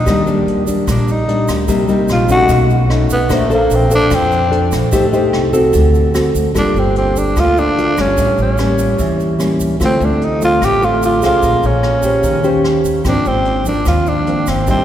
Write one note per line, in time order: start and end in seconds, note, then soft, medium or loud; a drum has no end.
0.00 0.28 D#4 medium
0.06 0.44 D#2 medium
0.06 0.85 D#3 medium
0.06 0.23 G3 medium
0.06 0.23 A#3 medium
0.06 0.24 D4 medium
0.06 kick medium
0.06 cross-stick medium
0.06 closed hi-hat soft
0.06 shaker medium
0.26 0.64 G3 medium
0.26 0.64 A#3 medium
0.26 0.64 D4 medium
0.26 closed hi-hat soft
0.26 shaker soft
0.46 0.84 D#2 medium
0.46 closed hi-hat soft
0.67 1.25 G3 medium
0.67 1.25 A#3 medium
0.67 1.25 D4 medium
0.67 kick soft
0.67 closed hi-hat soft
0.67 shaker medium
0.87 1.44 A#1 loud
0.87 1.67 A#2 medium
0.87 1.13 D4 medium
0.87 kick medium
0.87 cross-stick soft
0.87 closed hi-hat soft
0.87 shaker medium
1.08 1.50 D#4 medium
1.08 closed hi-hat soft
1.08 shaker soft
1.28 1.67 G3 soft
1.28 1.67 A#3 soft
1.28 1.67 D4 medium
1.28 closed hi-hat soft
1.48 1.68 D2 medium
1.48 kick soft
1.48 cross-stick medium
1.48 closed hi-hat soft
1.48 shaker medium
1.68 2.06 C2 medium
1.68 2.48 C3 medium
1.68 1.85 G3 medium
1.68 1.86 A#3 medium
1.68 1.86 D#4 medium
1.68 kick medium
1.68 closed hi-hat soft
1.68 shaker medium
1.88 2.26 G3 medium
1.88 2.26 A#3 medium
1.88 2.27 D#4 medium
1.88 closed hi-hat soft
1.88 shaker soft
2.08 2.47 A#1 medium
2.08 cross-stick medium
2.08 closed hi-hat soft
2.08 shaker medium
2.12 2.30 F4 medium
2.29 2.87 A3 medium
2.29 2.87 C#4 medium
2.29 2.87 D#4 medium
2.29 2.68 F#4 loud
2.29 kick soft
2.29 closed hi-hat soft
2.29 shaker medium
2.49 3.07 B1 loud
2.49 3.28 B2 medium
2.49 kick medium
2.49 closed hi-hat soft
2.49 shaker medium
2.70 closed hi-hat soft
2.70 shaker soft
2.89 3.17 A3 soft
2.89 3.17 C#4 soft
2.89 3.17 D#4 medium
2.89 cross-stick medium
2.89 closed hi-hat soft
3.10 3.31 B1 medium
3.10 3.36 B3 medium
3.10 kick soft
3.10 closed hi-hat soft
3.10 shaker medium
3.29 3.69 A#1 loud
3.29 4.09 A#3 medium
3.29 3.47 D4 medium
3.29 3.47 A4 medium
3.29 3.48 C5 medium
3.29 kick medium
3.29 cross-stick medium
3.29 closed hi-hat soft
3.29 shaker medium
3.35 3.53 A3 medium
3.49 3.88 D4 medium
3.49 3.88 A4 medium
3.49 3.88 C5 medium
3.49 closed hi-hat soft
3.49 shaker soft
3.54 3.76 A#3 medium
3.71 4.09 A#1 medium
3.71 closed hi-hat soft
3.71 shaker medium
3.75 3.94 C4 medium
3.90 4.49 D4 soft
3.90 4.49 A4 medium
3.90 4.49 C5 medium
3.90 kick soft
3.90 closed hi-hat soft
3.90 shaker medium
3.95 4.16 D4 loud
4.11 4.69 F2 loud
4.11 4.91 F3 medium
4.11 kick medium
4.11 cross-stick medium
4.11 closed hi-hat soft
4.11 shaker medium
4.15 4.74 C4 medium
4.31 closed hi-hat soft
4.31 shaker soft
4.51 4.91 D4 medium
4.51 4.91 A4 medium
4.51 4.91 C5 medium
4.51 closed hi-hat soft
4.72 4.92 A#1 medium
4.72 kick soft
4.72 cross-stick medium
4.72 closed hi-hat soft
4.72 shaker medium
4.92 5.31 A1 medium
4.92 5.72 A3 medium
4.92 5.05 D#4 medium
4.92 5.05 G4 medium
4.92 5.05 C5 medium
4.92 kick medium
4.92 closed hi-hat soft
4.92 shaker medium
5.13 5.50 D#4 medium
5.13 5.50 G4 medium
5.13 5.51 C5 medium
5.13 closed hi-hat soft
5.13 shaker soft
5.33 5.71 C2 loud
5.33 cross-stick medium
5.33 closed hi-hat soft
5.53 6.11 C4 medium
5.53 6.11 F#4 medium
5.53 6.11 A4 medium
5.53 kick soft
5.53 closed hi-hat soft
5.53 shaker medium
5.73 6.31 D2 loud
5.73 6.53 D3 medium
5.73 kick medium
5.73 closed hi-hat soft
5.73 shaker medium
5.94 closed hi-hat soft
5.94 shaker soft
6.14 6.54 C4 medium
6.14 6.54 F#4 soft
6.14 6.54 A4 medium
6.14 cross-stick medium
6.14 closed hi-hat soft
6.14 shaker medium
6.35 6.44 D2 medium
6.35 kick soft
6.35 closed hi-hat soft
6.35 shaker medium
6.55 6.65 G1 medium
6.55 7.34 G3 medium
6.55 7.10 A#3 soft
6.55 6.81 D4 medium
6.55 7.10 F4 medium
6.55 7.10 A4 medium
6.55 kick medium
6.55 cross-stick soft
6.55 closed hi-hat soft
6.55 shaker medium
6.74 7.32 G1 medium
6.74 closed hi-hat soft
6.74 shaker soft
6.79 6.97 C4 medium
6.96 7.20 C4 medium
6.96 closed hi-hat soft
7.16 7.41 D4 medium
7.16 kick soft
7.16 closed hi-hat soft
7.16 shaker medium
7.36 7.99 D2 medium
7.36 8.16 D3 soft
7.36 7.74 A#3 medium
7.36 7.74 F4 soft
7.36 7.61 F4 loud
7.36 7.74 A4 medium
7.36 kick soft
7.36 cross-stick soft
7.36 closed hi-hat soft
7.36 shaker medium
7.57 8.02 D4 loud
7.57 closed hi-hat soft
7.57 shaker soft
7.78 7.95 A#3 soft
7.78 7.95 F4 soft
7.78 7.95 A4 soft
7.78 closed hi-hat soft
7.97 8.17 G1 medium
7.97 8.55 G3 soft
7.97 8.56 C#4 soft
7.97 8.40 C#4 medium
7.97 kick soft
7.97 cross-stick medium
7.97 closed hi-hat soft
7.97 shaker medium
8.18 8.27 A1 medium
8.18 8.97 A2 medium
8.18 kick medium
8.18 closed hi-hat soft
8.18 shaker medium
8.38 8.95 A1 medium
8.38 closed hi-hat soft
8.38 shaker soft
8.42 9.17 C#4 medium
8.58 9.37 G3 soft
8.58 9.37 A#3 medium
8.58 9.37 C#4 medium
8.58 cross-stick medium
8.58 closed hi-hat soft
8.58 shaker medium
8.79 kick soft
8.79 closed hi-hat soft
8.79 shaker medium
8.98 9.61 E2 medium
8.98 9.78 E3 medium
8.98 kick soft
8.98 closed hi-hat soft
8.98 shaker medium
9.20 closed hi-hat soft
9.20 shaker soft
9.39 9.77 G3 soft
9.39 9.77 A#3 soft
9.39 9.77 C#4 medium
9.39 cross-stick soft
9.39 closed hi-hat soft
9.39 shaker medium
9.60 9.79 C#2 medium
9.60 kick soft
9.60 closed hi-hat soft
9.60 shaker medium
9.80 9.90 D2 medium
9.80 10.59 D3 soft
9.80 10.38 A3 soft
9.80 10.38 C4 medium
9.80 10.38 F4 medium
9.80 kick medium
9.80 cross-stick medium
9.80 closed hi-hat soft
9.80 shaker medium
9.85 10.06 C4 medium
10.00 10.57 D2 loud
10.00 closed hi-hat soft
10.00 shaker soft
10.05 10.26 D4 medium
10.22 10.43 D#4 medium
10.22 closed hi-hat soft
10.41 10.79 A3 medium
10.41 10.79 C4 soft
10.41 10.79 F4 medium
10.41 10.66 F4 loud
10.41 kick soft
10.41 closed hi-hat soft
10.41 shaker medium
10.61 11.23 A1 medium
10.61 11.41 A2 medium
10.61 10.86 G4 loud
10.61 kick soft
10.61 cross-stick medium
10.61 closed hi-hat soft
10.61 shaker medium
10.81 11.19 A3 medium
10.81 11.19 C4 medium
10.81 11.19 F4 medium
10.81 11.03 F4 medium
10.81 closed hi-hat soft
10.81 shaker soft
11.02 11.23 F4 medium
11.02 closed hi-hat soft
11.02 shaker medium
11.22 11.42 C2 medium
11.22 12.00 C#4 medium
11.22 11.68 F4 medium
11.22 12.01 G#4 medium
11.22 12.01 C5 medium
11.22 kick soft
11.22 cross-stick medium
11.22 closed hi-hat soft
11.22 shaker medium
11.42 11.52 A#1 medium
11.42 12.22 A#3 medium
11.42 kick soft
11.42 closed hi-hat soft
11.42 shaker medium
11.63 12.20 A#1 medium
11.63 12.86 C#4 medium
11.63 closed hi-hat soft
11.63 shaker soft
11.83 cross-stick medium
11.83 closed hi-hat soft
12.03 12.41 C#4 soft
12.03 12.41 G4 soft
12.03 12.42 C5 medium
12.03 kick soft
12.03 closed hi-hat soft
12.03 shaker medium
12.23 12.81 D#2 medium
12.23 13.03 D#3 medium
12.23 kick soft
12.23 closed hi-hat soft
12.23 shaker medium
12.43 13.01 C#4 medium
12.43 13.02 G4 medium
12.43 13.02 C5 medium
12.43 closed hi-hat soft
12.43 shaker soft
12.64 cross-stick medium
12.64 closed hi-hat soft
12.85 13.04 D#2 medium
12.85 kick soft
12.85 closed hi-hat soft
12.85 shaker medium
13.05 13.15 G#1 medium
13.05 13.84 G#2 medium
13.05 13.63 F3 medium
13.05 13.63 A#3 soft
13.05 13.63 C4 medium
13.05 13.29 D4 medium
13.05 kick medium
13.05 cross-stick medium
13.05 closed hi-hat soft
13.05 shaker medium
13.25 13.83 G#1 medium
13.25 13.67 C4 medium
13.25 closed hi-hat soft
13.25 shaker soft
13.45 closed hi-hat soft
13.66 14.24 F3 soft
13.66 14.24 A#3 soft
13.66 14.24 C4 medium
13.66 13.86 D4 medium
13.66 kick soft
13.66 closed hi-hat soft
13.66 shaker medium
13.85 14.49 D#2 medium
13.85 14.65 D#3 soft
13.85 14.10 F4 medium
13.85 kick soft
13.85 cross-stick soft
13.85 closed hi-hat soft
13.85 shaker medium
14.06 14.51 D4 medium
14.06 closed hi-hat soft
14.06 shaker soft
14.27 14.64 F3 soft
14.27 14.64 A#3 soft
14.27 14.64 C4 medium
14.27 closed hi-hat soft
14.47 14.66 G#1 medium
14.47 14.68 C4 medium
14.47 kick soft
14.47 cross-stick soft
14.47 closed hi-hat soft
14.47 shaker medium
14.67 14.77 A1 medium
14.67 14.85 A2 medium
14.67 14.85 G3 medium
14.67 14.85 C4 soft
14.67 14.85 C4 medium
14.67 14.85 D#4 medium
14.67 kick medium
14.67 closed hi-hat soft
14.67 shaker medium